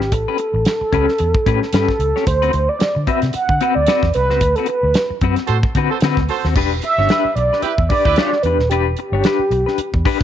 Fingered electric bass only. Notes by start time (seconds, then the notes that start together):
0.00 G#1
0.12 A1
0.54 A1
0.81 muted fingered electric bass stroke
0.92 C#2
1.20 E2
1.46 A2
1.73 G2
1.99 C#2
2.27 D2
2.54 D2
2.81 muted fingered electric bass stroke
2.96 D3
3.23 C3
3.35 muted fingered electric bass stroke
3.49 D3
3.76 D2
4.03 E2
4.15 C2
4.29 C#2
4.41 D2
4.83 D2
5.10 muted fingered electric bass stroke
5.22 F#2
5.49 A2
5.75 D3
6.02 D3
6.17 D2
6.44 D#2
6.56 E1
6.98 G1
7.25 muted fingered electric bass stroke
7.36 B1
7.62 muted fingered electric bass stroke
7.78 E2
8.06 D2
8.44 E2
8.58 D#1
8.70 E1
9.12 G1
9.39 muted fingered electric bass stroke
9.50 B1
9.78 muted fingered electric bass stroke
9.93 E2